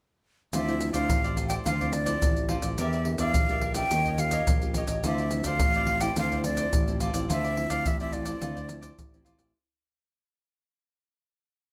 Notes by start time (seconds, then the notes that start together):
0.53 D2 D3 F3 C4 E4 F4 A4 C5 D5 E5, pandeiro, maracas, surdo
0.67 F3 C4 E4 A4 C5 D5, pandeiro, maracas
0.79 muted cavaquinho stroke, pandeiro, maracas
0.93 D2 A4 C5 D5 F5, pandeiro, maracas, surdo
1.09 A1 A2 F3 C4, pandeiro, maracas, surdo
1.24 A4 C5 D5, pandeiro, maracas
1.37 F4 A4 C5 D5, pandeiro, maracas, surdo
1.48 A4 C5 D5 G5, pandeiro, maracas
1.65 D2 D3 F3 C4 E4 F4 A4 C5 D5 F5, pandeiro, maracas, surdo
1.81 F3 C4 E4 A4 C5 D5, pandeiro, maracas, surdo
1.93 D5, muted cavaquinho stroke, pandeiro, maracas
2.06 F3 C4 E4 A4 C5 D5, pandeiro, maracas, surdo
2.21 A1 A2, pandeiro, maracas, surdo
2.37 pandeiro, maracas
2.48 F3 C4 E4 F4 A4 C5 D5, pandeiro
2.62 A1 A4 C5 D5, pandeiro, maracas, surdo
2.78 E2 E3 A#3 D4 G4 A#4 D5 E5, pandeiro, maracas, surdo
2.93 A#4 D5 E5, pandeiro, maracas
3.05 A#3 D4 G4, muted cavaquinho stroke, pandeiro
3.18 E2 A#4 D5 E5 F5, pandeiro, maracas, surdo
3.34 A#1 E3, pandeiro, maracas, surdo
3.48 A#3 D4 G4 D5 E5, pandeiro, maracas
3.53 A#4
3.61 G4 A#4 D5 E5, pandeiro
3.74 C#4 F4 G4 D5 E5 G5, pandeiro, maracas
3.78 A#4
3.90 D#2 D#3 D#4 G4 C#5, pandeiro, maracas, surdo
3.95 D#5
4.06 D#5, pandeiro, maracas, surdo
4.10 G4 C#5
4.18 C#4 F4 G4 F5, muted cavaquinho stroke, pandeiro, maracas
4.31 G4 C#5 D#5, pandeiro, maracas, surdo
4.47 A#1, pandeiro, maracas, surdo
4.62 C#4 F4 G4, pandeiro, maracas
4.74 D#4 G4 C#5 D#5, pandeiro, maracas
4.87 A1 G4 C#5 D#5, pandeiro, maracas, surdo
5.04 D2 D3 F3 C4 E4 F4 A4 C5 D5 E5, pandeiro, maracas, surdo
5.18 A4 C5 D5, pandeiro, maracas
5.31 F3 C4 E4, muted cavaquinho stroke, pandeiro, maracas
5.44 D2 A4 C5 D5 F5, pandeiro, maracas, surdo
5.59 A1 A2, pandeiro, maracas, surdo
5.74 F3 C4 E4 C5 D5, pandeiro, maracas
5.78 A4
5.87 F4 A4 C5 D5, pandeiro
6.00 F3 C4 E4 A4 C5 D5 G5, pandeiro, maracas
6.16 D2 D3 F3 C4 E4 F4 A4 C5 D5 F5, pandeiro, maracas, surdo
6.32 A4 C5 D5, pandeiro, maracas, surdo
6.44 F3 C4 E4 D5, muted cavaquinho stroke, pandeiro, maracas
6.57 A4 C5 D5, pandeiro, maracas, surdo
6.73 A1 A2, pandeiro, maracas, surdo
6.88 F3 C4 E4, pandeiro, maracas
7.00 F4 A4 C5 D5, pandeiro, maracas
7.13 A1 F3 C4 E4 A4 C5 D5, pandeiro, maracas, surdo
7.29 D2 D3 F3 C4 E4 F4 A4 C5 D5 E5, pandeiro, maracas, surdo
7.44 A4 C5 D5, pandeiro, maracas
7.56 F3 C4 E4, muted cavaquinho stroke, pandeiro
7.70 D2 A4 C5 D5 F5, pandeiro, maracas, surdo
7.86 A1 A2 E5, pandeiro, maracas, surdo
8.00 F3 C4 E4 A4 C5 D5 E5, pandeiro, maracas
8.12 F4 A4 C5 D5, pandeiro, maracas, surdo
8.25 F3 C4 E4 A4 C5 D5, pandeiro, maracas
8.41 D2 D3 F3 C4 E4 F4 A4 C5 D5, pandeiro, maracas, surdo
8.55 A4 C5 D5, pandeiro, maracas, surdo
8.68 F3 C4 E4, muted cavaquinho stroke, pandeiro, maracas
8.81 A4 C5 D5, pandeiro, maracas, surdo
8.98 A1, pandeiro, maracas, surdo
9.13 F3 C4 E4, pandeiro, maracas
9.24 F4 A4 C5 D5, pandeiro, maracas
9.38 A1 A4 C5 D5, pandeiro, maracas, surdo